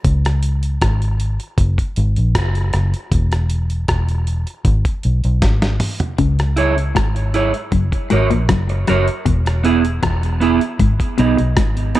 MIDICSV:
0, 0, Header, 1, 6, 480
1, 0, Start_track
1, 0, Tempo, 768246
1, 29, Time_signature, 4, 2, 24, 8
1, 7495, End_track
2, 0, Start_track
2, 0, Title_t, "Clean electric guitar"
2, 0, Program_c, 0, 27
2, 4101, Note_on_c, 0, 64, 69
2, 4108, Note_on_c, 0, 68, 73
2, 4113, Note_on_c, 0, 73, 80
2, 4211, Note_off_c, 0, 64, 0
2, 4214, Note_off_c, 0, 68, 0
2, 4217, Note_off_c, 0, 73, 0
2, 4587, Note_on_c, 0, 64, 74
2, 4591, Note_on_c, 0, 68, 75
2, 4599, Note_on_c, 0, 73, 79
2, 4694, Note_off_c, 0, 64, 0
2, 4696, Note_off_c, 0, 68, 0
2, 4700, Note_off_c, 0, 73, 0
2, 5066, Note_on_c, 0, 66, 76
2, 5071, Note_on_c, 0, 70, 85
2, 5080, Note_on_c, 0, 73, 86
2, 5173, Note_off_c, 0, 66, 0
2, 5176, Note_off_c, 0, 70, 0
2, 5180, Note_off_c, 0, 73, 0
2, 5547, Note_on_c, 0, 66, 88
2, 5556, Note_on_c, 0, 70, 84
2, 5560, Note_on_c, 0, 73, 92
2, 5654, Note_off_c, 0, 66, 0
2, 5658, Note_off_c, 0, 70, 0
2, 5660, Note_off_c, 0, 73, 0
2, 6021, Note_on_c, 0, 59, 83
2, 6028, Note_on_c, 0, 64, 76
2, 6032, Note_on_c, 0, 68, 95
2, 6130, Note_off_c, 0, 59, 0
2, 6134, Note_off_c, 0, 64, 0
2, 6136, Note_off_c, 0, 68, 0
2, 6501, Note_on_c, 0, 59, 81
2, 6509, Note_on_c, 0, 64, 93
2, 6513, Note_on_c, 0, 68, 101
2, 6611, Note_off_c, 0, 59, 0
2, 6615, Note_off_c, 0, 64, 0
2, 6617, Note_off_c, 0, 68, 0
2, 6990, Note_on_c, 0, 59, 70
2, 6993, Note_on_c, 0, 63, 76
2, 7003, Note_on_c, 0, 68, 79
2, 7095, Note_off_c, 0, 59, 0
2, 7097, Note_off_c, 0, 63, 0
2, 7101, Note_off_c, 0, 68, 0
2, 7467, Note_on_c, 0, 59, 82
2, 7473, Note_on_c, 0, 63, 88
2, 7495, Note_off_c, 0, 59, 0
2, 7495, Note_off_c, 0, 63, 0
2, 7495, End_track
3, 0, Start_track
3, 0, Title_t, "Clean electric guitar"
3, 0, Program_c, 1, 27
3, 3864, Note_on_c, 1, 49, 78
3, 4009, Note_off_c, 1, 49, 0
3, 4342, Note_on_c, 1, 44, 75
3, 4487, Note_off_c, 1, 44, 0
3, 4825, Note_on_c, 1, 42, 82
3, 4900, Note_off_c, 1, 42, 0
3, 5062, Note_on_c, 1, 44, 73
3, 5138, Note_off_c, 1, 44, 0
3, 5189, Note_on_c, 1, 46, 62
3, 5258, Note_off_c, 1, 46, 0
3, 5306, Note_on_c, 1, 42, 72
3, 5450, Note_off_c, 1, 42, 0
3, 5545, Note_on_c, 1, 42, 66
3, 5621, Note_off_c, 1, 42, 0
3, 5782, Note_on_c, 1, 40, 82
3, 5927, Note_off_c, 1, 40, 0
3, 6264, Note_on_c, 1, 40, 75
3, 6409, Note_off_c, 1, 40, 0
3, 6747, Note_on_c, 1, 44, 83
3, 6822, Note_off_c, 1, 44, 0
3, 6983, Note_on_c, 1, 47, 72
3, 7059, Note_off_c, 1, 47, 0
3, 7107, Note_on_c, 1, 47, 64
3, 7177, Note_off_c, 1, 47, 0
3, 7228, Note_on_c, 1, 44, 75
3, 7371, Note_off_c, 1, 44, 0
3, 7495, End_track
4, 0, Start_track
4, 0, Title_t, "Fingered electric bass"
4, 0, Program_c, 2, 33
4, 33, Note_on_c, 2, 37, 95
4, 485, Note_off_c, 2, 37, 0
4, 513, Note_on_c, 2, 32, 92
4, 855, Note_off_c, 2, 32, 0
4, 990, Note_on_c, 2, 30, 90
4, 1107, Note_off_c, 2, 30, 0
4, 1233, Note_on_c, 2, 32, 89
4, 1349, Note_off_c, 2, 32, 0
4, 1361, Note_on_c, 2, 34, 79
4, 1466, Note_off_c, 2, 34, 0
4, 1713, Note_on_c, 2, 30, 86
4, 1829, Note_off_c, 2, 30, 0
4, 1950, Note_on_c, 2, 28, 88
4, 2404, Note_off_c, 2, 28, 0
4, 2430, Note_on_c, 2, 28, 88
4, 2773, Note_off_c, 2, 28, 0
4, 2908, Note_on_c, 2, 32, 97
4, 3026, Note_off_c, 2, 32, 0
4, 3155, Note_on_c, 2, 35, 80
4, 3269, Note_off_c, 2, 35, 0
4, 3278, Note_on_c, 2, 35, 76
4, 3383, Note_off_c, 2, 35, 0
4, 3390, Note_on_c, 2, 32, 82
4, 3615, Note_off_c, 2, 32, 0
4, 3869, Note_on_c, 2, 37, 100
4, 4322, Note_off_c, 2, 37, 0
4, 4352, Note_on_c, 2, 32, 85
4, 4694, Note_off_c, 2, 32, 0
4, 4826, Note_on_c, 2, 30, 92
4, 4944, Note_off_c, 2, 30, 0
4, 5074, Note_on_c, 2, 32, 80
4, 5189, Note_off_c, 2, 32, 0
4, 5203, Note_on_c, 2, 34, 76
4, 5306, Note_off_c, 2, 34, 0
4, 5310, Note_on_c, 2, 30, 86
4, 5534, Note_off_c, 2, 30, 0
4, 5557, Note_on_c, 2, 30, 76
4, 5670, Note_off_c, 2, 30, 0
4, 5790, Note_on_c, 2, 28, 94
4, 6243, Note_off_c, 2, 28, 0
4, 6270, Note_on_c, 2, 28, 85
4, 6613, Note_off_c, 2, 28, 0
4, 6748, Note_on_c, 2, 32, 91
4, 6865, Note_off_c, 2, 32, 0
4, 6994, Note_on_c, 2, 35, 88
4, 7108, Note_off_c, 2, 35, 0
4, 7122, Note_on_c, 2, 35, 81
4, 7225, Note_off_c, 2, 35, 0
4, 7232, Note_on_c, 2, 32, 83
4, 7456, Note_off_c, 2, 32, 0
4, 7495, End_track
5, 0, Start_track
5, 0, Title_t, "Muted clean electric guitar strokes"
5, 5195, Note_on_c, 9, 29, 49
5, 5258, Note_off_c, 9, 29, 0
5, 5435, Note_on_c, 9, 29, 43
5, 5497, Note_off_c, 9, 29, 0
5, 7495, End_track
6, 0, Start_track
6, 0, Title_t, "Drums"
6, 28, Note_on_c, 9, 36, 102
6, 28, Note_on_c, 9, 42, 89
6, 90, Note_off_c, 9, 42, 0
6, 91, Note_off_c, 9, 36, 0
6, 157, Note_on_c, 9, 42, 52
6, 163, Note_on_c, 9, 37, 66
6, 219, Note_off_c, 9, 42, 0
6, 226, Note_off_c, 9, 37, 0
6, 266, Note_on_c, 9, 42, 80
6, 329, Note_off_c, 9, 42, 0
6, 392, Note_on_c, 9, 42, 57
6, 455, Note_off_c, 9, 42, 0
6, 509, Note_on_c, 9, 42, 81
6, 510, Note_on_c, 9, 36, 102
6, 513, Note_on_c, 9, 37, 100
6, 572, Note_off_c, 9, 36, 0
6, 572, Note_off_c, 9, 42, 0
6, 576, Note_off_c, 9, 37, 0
6, 636, Note_on_c, 9, 42, 53
6, 699, Note_off_c, 9, 42, 0
6, 748, Note_on_c, 9, 42, 68
6, 810, Note_off_c, 9, 42, 0
6, 873, Note_on_c, 9, 42, 55
6, 936, Note_off_c, 9, 42, 0
6, 985, Note_on_c, 9, 36, 120
6, 987, Note_on_c, 9, 42, 83
6, 1048, Note_off_c, 9, 36, 0
6, 1049, Note_off_c, 9, 42, 0
6, 1113, Note_on_c, 9, 36, 74
6, 1118, Note_on_c, 9, 42, 54
6, 1175, Note_off_c, 9, 36, 0
6, 1180, Note_off_c, 9, 42, 0
6, 1227, Note_on_c, 9, 42, 69
6, 1289, Note_off_c, 9, 42, 0
6, 1352, Note_on_c, 9, 42, 49
6, 1415, Note_off_c, 9, 42, 0
6, 1468, Note_on_c, 9, 36, 107
6, 1469, Note_on_c, 9, 37, 102
6, 1470, Note_on_c, 9, 42, 91
6, 1531, Note_off_c, 9, 36, 0
6, 1531, Note_off_c, 9, 37, 0
6, 1533, Note_off_c, 9, 42, 0
6, 1594, Note_on_c, 9, 42, 45
6, 1657, Note_off_c, 9, 42, 0
6, 1705, Note_on_c, 9, 42, 73
6, 1709, Note_on_c, 9, 37, 63
6, 1768, Note_off_c, 9, 42, 0
6, 1772, Note_off_c, 9, 37, 0
6, 1835, Note_on_c, 9, 42, 52
6, 1897, Note_off_c, 9, 42, 0
6, 1947, Note_on_c, 9, 36, 114
6, 1948, Note_on_c, 9, 42, 88
6, 2009, Note_off_c, 9, 36, 0
6, 2011, Note_off_c, 9, 42, 0
6, 2072, Note_on_c, 9, 42, 52
6, 2078, Note_on_c, 9, 37, 59
6, 2134, Note_off_c, 9, 42, 0
6, 2141, Note_off_c, 9, 37, 0
6, 2184, Note_on_c, 9, 42, 74
6, 2247, Note_off_c, 9, 42, 0
6, 2311, Note_on_c, 9, 42, 50
6, 2373, Note_off_c, 9, 42, 0
6, 2426, Note_on_c, 9, 42, 74
6, 2428, Note_on_c, 9, 36, 108
6, 2430, Note_on_c, 9, 37, 105
6, 2488, Note_off_c, 9, 42, 0
6, 2490, Note_off_c, 9, 36, 0
6, 2493, Note_off_c, 9, 37, 0
6, 2552, Note_on_c, 9, 42, 50
6, 2615, Note_off_c, 9, 42, 0
6, 2668, Note_on_c, 9, 42, 68
6, 2731, Note_off_c, 9, 42, 0
6, 2792, Note_on_c, 9, 42, 55
6, 2855, Note_off_c, 9, 42, 0
6, 2904, Note_on_c, 9, 36, 112
6, 2904, Note_on_c, 9, 42, 83
6, 2966, Note_off_c, 9, 36, 0
6, 2967, Note_off_c, 9, 42, 0
6, 3030, Note_on_c, 9, 36, 75
6, 3032, Note_on_c, 9, 42, 54
6, 3093, Note_off_c, 9, 36, 0
6, 3094, Note_off_c, 9, 42, 0
6, 3145, Note_on_c, 9, 42, 65
6, 3207, Note_off_c, 9, 42, 0
6, 3272, Note_on_c, 9, 42, 46
6, 3334, Note_off_c, 9, 42, 0
6, 3386, Note_on_c, 9, 36, 103
6, 3386, Note_on_c, 9, 38, 59
6, 3387, Note_on_c, 9, 42, 86
6, 3449, Note_off_c, 9, 36, 0
6, 3449, Note_off_c, 9, 38, 0
6, 3449, Note_off_c, 9, 42, 0
6, 3512, Note_on_c, 9, 38, 58
6, 3512, Note_on_c, 9, 42, 51
6, 3574, Note_off_c, 9, 42, 0
6, 3575, Note_off_c, 9, 38, 0
6, 3623, Note_on_c, 9, 45, 82
6, 3623, Note_on_c, 9, 46, 79
6, 3685, Note_off_c, 9, 46, 0
6, 3686, Note_off_c, 9, 45, 0
6, 3749, Note_on_c, 9, 43, 93
6, 3750, Note_on_c, 9, 42, 50
6, 3811, Note_off_c, 9, 43, 0
6, 3813, Note_off_c, 9, 42, 0
6, 3864, Note_on_c, 9, 42, 78
6, 3865, Note_on_c, 9, 36, 101
6, 3926, Note_off_c, 9, 42, 0
6, 3927, Note_off_c, 9, 36, 0
6, 3991, Note_on_c, 9, 42, 52
6, 3998, Note_on_c, 9, 37, 61
6, 4054, Note_off_c, 9, 42, 0
6, 4060, Note_off_c, 9, 37, 0
6, 4103, Note_on_c, 9, 42, 75
6, 4166, Note_off_c, 9, 42, 0
6, 4235, Note_on_c, 9, 42, 49
6, 4298, Note_off_c, 9, 42, 0
6, 4348, Note_on_c, 9, 36, 102
6, 4348, Note_on_c, 9, 42, 70
6, 4353, Note_on_c, 9, 37, 109
6, 4410, Note_off_c, 9, 36, 0
6, 4411, Note_off_c, 9, 42, 0
6, 4415, Note_off_c, 9, 37, 0
6, 4473, Note_on_c, 9, 42, 51
6, 4536, Note_off_c, 9, 42, 0
6, 4586, Note_on_c, 9, 42, 65
6, 4648, Note_off_c, 9, 42, 0
6, 4711, Note_on_c, 9, 42, 48
6, 4773, Note_off_c, 9, 42, 0
6, 4823, Note_on_c, 9, 36, 116
6, 4823, Note_on_c, 9, 42, 73
6, 4885, Note_off_c, 9, 42, 0
6, 4886, Note_off_c, 9, 36, 0
6, 4950, Note_on_c, 9, 36, 78
6, 4953, Note_on_c, 9, 42, 49
6, 5013, Note_off_c, 9, 36, 0
6, 5016, Note_off_c, 9, 42, 0
6, 5062, Note_on_c, 9, 42, 69
6, 5124, Note_off_c, 9, 42, 0
6, 5190, Note_on_c, 9, 42, 47
6, 5252, Note_off_c, 9, 42, 0
6, 5304, Note_on_c, 9, 37, 91
6, 5306, Note_on_c, 9, 36, 102
6, 5306, Note_on_c, 9, 42, 78
6, 5366, Note_off_c, 9, 37, 0
6, 5368, Note_off_c, 9, 36, 0
6, 5368, Note_off_c, 9, 42, 0
6, 5431, Note_on_c, 9, 42, 43
6, 5494, Note_off_c, 9, 42, 0
6, 5544, Note_on_c, 9, 42, 73
6, 5548, Note_on_c, 9, 37, 55
6, 5607, Note_off_c, 9, 42, 0
6, 5611, Note_off_c, 9, 37, 0
6, 5671, Note_on_c, 9, 42, 52
6, 5733, Note_off_c, 9, 42, 0
6, 5785, Note_on_c, 9, 36, 103
6, 5785, Note_on_c, 9, 42, 89
6, 5847, Note_off_c, 9, 42, 0
6, 5848, Note_off_c, 9, 36, 0
6, 5912, Note_on_c, 9, 42, 56
6, 5919, Note_on_c, 9, 37, 63
6, 5975, Note_off_c, 9, 42, 0
6, 5981, Note_off_c, 9, 37, 0
6, 6027, Note_on_c, 9, 42, 69
6, 6089, Note_off_c, 9, 42, 0
6, 6152, Note_on_c, 9, 42, 55
6, 6214, Note_off_c, 9, 42, 0
6, 6265, Note_on_c, 9, 42, 67
6, 6267, Note_on_c, 9, 36, 101
6, 6269, Note_on_c, 9, 37, 95
6, 6327, Note_off_c, 9, 42, 0
6, 6329, Note_off_c, 9, 36, 0
6, 6331, Note_off_c, 9, 37, 0
6, 6393, Note_on_c, 9, 42, 47
6, 6456, Note_off_c, 9, 42, 0
6, 6507, Note_on_c, 9, 42, 57
6, 6569, Note_off_c, 9, 42, 0
6, 6631, Note_on_c, 9, 42, 51
6, 6693, Note_off_c, 9, 42, 0
6, 6744, Note_on_c, 9, 36, 107
6, 6745, Note_on_c, 9, 42, 77
6, 6807, Note_off_c, 9, 36, 0
6, 6807, Note_off_c, 9, 42, 0
6, 6871, Note_on_c, 9, 36, 75
6, 6876, Note_on_c, 9, 42, 54
6, 6934, Note_off_c, 9, 36, 0
6, 6938, Note_off_c, 9, 42, 0
6, 6986, Note_on_c, 9, 42, 75
6, 7048, Note_off_c, 9, 42, 0
6, 7113, Note_on_c, 9, 42, 50
6, 7175, Note_off_c, 9, 42, 0
6, 7227, Note_on_c, 9, 36, 105
6, 7227, Note_on_c, 9, 37, 101
6, 7228, Note_on_c, 9, 42, 83
6, 7289, Note_off_c, 9, 37, 0
6, 7290, Note_off_c, 9, 36, 0
6, 7291, Note_off_c, 9, 42, 0
6, 7353, Note_on_c, 9, 42, 45
6, 7415, Note_off_c, 9, 42, 0
6, 7465, Note_on_c, 9, 42, 74
6, 7469, Note_on_c, 9, 37, 59
6, 7495, Note_off_c, 9, 37, 0
6, 7495, Note_off_c, 9, 42, 0
6, 7495, End_track
0, 0, End_of_file